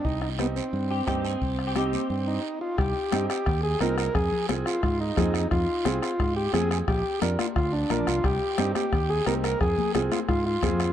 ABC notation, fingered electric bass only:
X:1
M:4/4
L:1/8
Q:1/4=176
K:Cm
V:1 name="Fingered electric bass" clef=bass
C,,4 G,,2 G,,2 | C,,4 G,,2 z2 | C,, z G,, z E,,2 C,,2 | F,, z C,, z A,,2 F,,2 |
F,, z C,, z A,,2 F,,2 | B,,, z F,, z D,,2 B,,, C,, | C,, z G,, z E,,2 C,,2 | F,, z C,, z A,,2 F,,2 |]